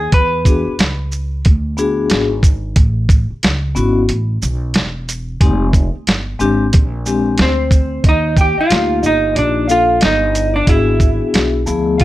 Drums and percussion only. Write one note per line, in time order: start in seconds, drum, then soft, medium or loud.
0.12 kick loud
0.12 closed hi-hat medium
0.45 kick medium
0.45 closed hi-hat soft
0.45 shaker soft
0.79 snare loud
0.79 closed hi-hat medium
1.12 shaker soft
1.45 kick medium
1.45 closed hi-hat medium
1.78 shaker soft
2.10 snare medium
2.10 closed hi-hat medium
2.43 kick medium
2.43 closed hi-hat soft
2.43 shaker medium
2.76 kick loud
2.76 closed hi-hat medium
3.09 kick medium
3.09 closed hi-hat soft
3.09 shaker soft
3.43 snare loud
3.43 closed hi-hat medium
3.76 shaker soft
4.09 closed hi-hat medium
4.42 shaker medium
4.74 snare loud
4.74 closed hi-hat medium
5.09 closed hi-hat medium
5.09 shaker medium
5.41 kick loud
5.41 closed hi-hat medium
5.73 kick medium
5.73 closed hi-hat soft
5.73 shaker soft
6.07 snare loud
6.07 closed hi-hat medium
6.40 shaker soft
6.73 kick medium
6.73 closed hi-hat medium
7.06 shaker soft
7.38 snare loud
7.38 closed hi-hat medium
7.71 kick medium
7.71 closed hi-hat soft
7.71 shaker medium
8.04 kick loud
8.04 closed hi-hat medium
8.37 kick medium
8.37 closed hi-hat soft
8.37 shaker soft
8.70 snare medium
8.70 closed hi-hat medium
9.03 shaker soft
9.36 closed hi-hat medium
9.69 shaker soft
10.01 snare medium
10.01 closed hi-hat medium
10.35 closed hi-hat medium
10.35 shaker medium
10.67 kick medium
10.67 closed hi-hat medium
11.00 kick medium
11.00 closed hi-hat soft
11.00 shaker soft
11.34 snare loud
11.34 closed hi-hat medium
11.67 shaker soft
12.00 kick medium
12.00 closed hi-hat medium